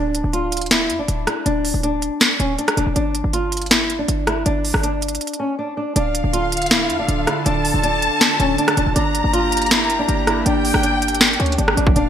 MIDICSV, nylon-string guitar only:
0, 0, Header, 1, 2, 480
1, 0, Start_track
1, 0, Tempo, 375000
1, 1869, Time_signature, 4, 2, 24, 8
1, 15478, End_track
2, 0, Start_track
2, 0, Title_t, "Nylon-string guitar"
2, 0, Program_c, 0, 24
2, 0, Note_on_c, 0, 62, 102
2, 401, Note_off_c, 0, 62, 0
2, 425, Note_on_c, 0, 65, 84
2, 878, Note_off_c, 0, 65, 0
2, 910, Note_on_c, 0, 64, 83
2, 1248, Note_off_c, 0, 64, 0
2, 1267, Note_on_c, 0, 62, 77
2, 1606, Note_off_c, 0, 62, 0
2, 1626, Note_on_c, 0, 64, 75
2, 1822, Note_off_c, 0, 64, 0
2, 1868, Note_on_c, 0, 62, 98
2, 2319, Note_off_c, 0, 62, 0
2, 2348, Note_on_c, 0, 62, 85
2, 3025, Note_off_c, 0, 62, 0
2, 3070, Note_on_c, 0, 61, 79
2, 3264, Note_off_c, 0, 61, 0
2, 3310, Note_on_c, 0, 62, 78
2, 3504, Note_off_c, 0, 62, 0
2, 3547, Note_on_c, 0, 62, 81
2, 3743, Note_off_c, 0, 62, 0
2, 3786, Note_on_c, 0, 62, 103
2, 4238, Note_off_c, 0, 62, 0
2, 4267, Note_on_c, 0, 65, 76
2, 4719, Note_off_c, 0, 65, 0
2, 4744, Note_on_c, 0, 64, 76
2, 5085, Note_off_c, 0, 64, 0
2, 5105, Note_on_c, 0, 62, 85
2, 5445, Note_off_c, 0, 62, 0
2, 5469, Note_on_c, 0, 64, 78
2, 5664, Note_off_c, 0, 64, 0
2, 5709, Note_on_c, 0, 62, 93
2, 6160, Note_off_c, 0, 62, 0
2, 6185, Note_on_c, 0, 62, 81
2, 6863, Note_off_c, 0, 62, 0
2, 6906, Note_on_c, 0, 61, 75
2, 7102, Note_off_c, 0, 61, 0
2, 7151, Note_on_c, 0, 62, 74
2, 7345, Note_off_c, 0, 62, 0
2, 7388, Note_on_c, 0, 62, 78
2, 7583, Note_off_c, 0, 62, 0
2, 7630, Note_on_c, 0, 62, 106
2, 8081, Note_off_c, 0, 62, 0
2, 8106, Note_on_c, 0, 65, 86
2, 8559, Note_off_c, 0, 65, 0
2, 8592, Note_on_c, 0, 64, 83
2, 8929, Note_off_c, 0, 64, 0
2, 8950, Note_on_c, 0, 62, 78
2, 9288, Note_off_c, 0, 62, 0
2, 9312, Note_on_c, 0, 64, 76
2, 9505, Note_off_c, 0, 64, 0
2, 9550, Note_on_c, 0, 62, 98
2, 10001, Note_off_c, 0, 62, 0
2, 10030, Note_on_c, 0, 62, 84
2, 10706, Note_off_c, 0, 62, 0
2, 10752, Note_on_c, 0, 61, 82
2, 10946, Note_off_c, 0, 61, 0
2, 10989, Note_on_c, 0, 62, 78
2, 11183, Note_off_c, 0, 62, 0
2, 11228, Note_on_c, 0, 62, 84
2, 11423, Note_off_c, 0, 62, 0
2, 11466, Note_on_c, 0, 62, 107
2, 11918, Note_off_c, 0, 62, 0
2, 11948, Note_on_c, 0, 65, 78
2, 12399, Note_off_c, 0, 65, 0
2, 12428, Note_on_c, 0, 64, 77
2, 12766, Note_off_c, 0, 64, 0
2, 12790, Note_on_c, 0, 62, 87
2, 13128, Note_off_c, 0, 62, 0
2, 13152, Note_on_c, 0, 64, 80
2, 13346, Note_off_c, 0, 64, 0
2, 13389, Note_on_c, 0, 62, 100
2, 13840, Note_off_c, 0, 62, 0
2, 13865, Note_on_c, 0, 62, 84
2, 14543, Note_off_c, 0, 62, 0
2, 14586, Note_on_c, 0, 61, 78
2, 14782, Note_off_c, 0, 61, 0
2, 14832, Note_on_c, 0, 62, 81
2, 15026, Note_off_c, 0, 62, 0
2, 15071, Note_on_c, 0, 62, 85
2, 15265, Note_off_c, 0, 62, 0
2, 15314, Note_on_c, 0, 62, 101
2, 15478, Note_off_c, 0, 62, 0
2, 15478, End_track
0, 0, End_of_file